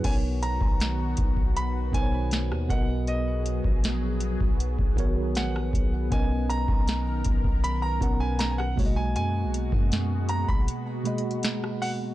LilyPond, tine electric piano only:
\new Staff \with { instrumentName = "Tine electric piano" } { \time 4/4 \key b \major \tempo 4 = 79 <b, b cis' dis' ais' cis''>4. r4 <b, b dis' ais' c'' cis''>4 <b, b fis' ais' dis''>8~ | <b, b fis' ais' dis''>4 r4. <dis b fis' ais' cis''>4 r8 | <b, b cis' ais' dis''>4. r4 <b, b cis' ais' fis''>4 <b, gis ais fis' cis'' dis''>8~ | <b, gis ais fis' cis'' dis''>4 r4. <b, gis ais fis' dis''>4 r8 | }